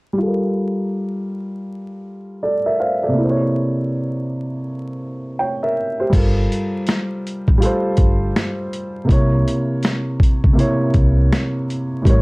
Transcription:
0.13 3.09 G3 medium
0.18 3.11 F4 medium
0.23 2.40 A4 medium
0.27 2.42 A#4 medium
2.43 2.65 A4 soft
2.43 2.65 D5 medium
2.66 2.79 A#4 medium
2.66 2.79 E5 medium
2.80 3.02 C5 medium
2.80 3.02 F5 medium
3.03 3.39 A4 soft
3.03 3.38 D5 medium
3.08 6.05 C3 medium
3.14 6.07 A#3 medium
3.18 6.10 E4 medium
3.23 3.28 C5 medium
3.30 5.38 C#5 medium
5.39 5.61 C#5 medium
5.39 5.61 G5 medium
5.63 5.98 A#4 medium
5.63 5.98 E5 medium
6.00 6.35 G4 soft
6.00 6.35 C5 medium
6.10 6.46 G1 loud
6.10 7.19 G3 medium
6.10 7.20 F4 medium
6.10 kick loud
6.10 crash medium
6.14 7.21 A4 medium
6.14 7.22 A#4 medium
6.14 closed hi-hat medium
6.52 closed hi-hat medium
6.87 snare loud
6.87 closed hi-hat medium
7.27 closed hi-hat medium
7.48 7.60 A1 medium
7.48 kick medium
7.58 8.67 G3 medium
7.58 8.68 F4 medium
7.62 8.69 A4 medium
7.62 8.71 C5 medium
7.62 closed hi-hat medium
7.97 8.31 G1 medium
7.97 kick medium
7.97 closed hi-hat medium
8.36 snare loud
8.36 closed hi-hat medium
8.73 closed hi-hat medium
9.04 10.14 C3 medium
9.04 10.15 A#3 medium
9.09 9.42 C2 medium
9.09 10.17 E4 medium
9.09 10.18 C#5 medium
9.09 kick loud
9.09 closed hi-hat medium
9.48 closed hi-hat medium
9.83 snare loud
9.83 closed hi-hat medium
10.20 kick medium
10.20 closed hi-hat medium
10.44 10.56 C#2 medium
10.44 kick medium
10.53 11.63 C3 medium
10.53 11.64 A#3 medium
10.58 11.65 E4 medium
10.58 11.66 C#5 medium
10.58 closed hi-hat medium
10.94 11.27 C2 medium
10.94 kick medium
10.94 closed hi-hat medium
11.32 snare loud
11.32 closed hi-hat medium
11.70 closed hi-hat medium
12.02 12.22 A2 medium
12.02 12.22 G3 medium
12.02 kick medium
12.06 12.22 A1 loud
12.06 12.22 A#4 medium
12.06 12.22 C#5 medium
12.06 closed hi-hat medium

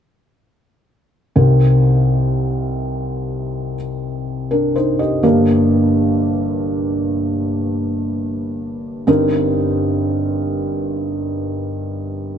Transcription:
1.36 5.20 C2 soft
1.36 5.20 C3 soft
1.36 5.20 C4 soft
1.36 3.75 D#4 soft
1.36 3.75 G4 soft
1.36 3.75 A#4 soft
4.51 4.74 D4 soft
4.51 4.74 A#4 soft
4.76 4.99 D#4 soft
4.76 4.99 C5 soft
4.99 5.22 G4 soft
4.99 5.45 D#5 soft
5.23 9.04 G1 soft
5.23 9.04 G2 soft
5.23 9.04 A#3 soft
5.23 9.04 D4 soft
5.23 9.04 G4 soft
5.23 9.04 A#4 soft
9.07 12.38 G1 soft
9.07 12.38 G2 soft
9.07 12.38 C4 soft
9.07 12.38 D#4 soft
9.07 12.38 G4 soft
9.07 12.38 A#4 medium

